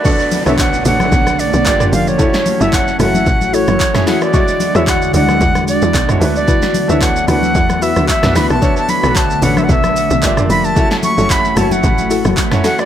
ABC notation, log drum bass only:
X:1
M:4/4
L:1/16
Q:"Swing 16ths" 1/4=112
K:Bdor
V:1 name="Log drum bass" clef=bass
z3 B,,,3 A,,,2 B,,,3 B,,, =G,,,2 =F,,,2 | z3 F,,,3 F,,,2 A,,,3 F,,, z4 | z3 E,,3 D,,2 E,,3 E,, B,,,2 D,,2 | z3 D,,3 D,,2 E,,3 D,, z B,,, D,, B,,, |
z3 B,,,3 A,,,2 B,,,3 B,,, =G,,,2 =F,,,2 | z3 F,,,3 F,,,2 A,,,3 F,,, z4 |]